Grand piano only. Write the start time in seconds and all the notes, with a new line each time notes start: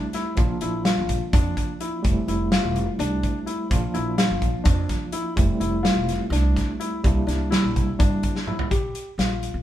0.14 E4
0.62 E4
0.85 F4
1.33 D4
1.81 E4
2.28 E4
2.52 F4
2.99 D4
3.46 E4
3.94 E4
4.18 F4
4.64 D4
5.13 E4
5.60 E4
5.83 F4
6.32 D4
6.80 E4
7.27 D4
7.51 E4
7.99 D4
8.48 E4
8.71 G4
9.19 F4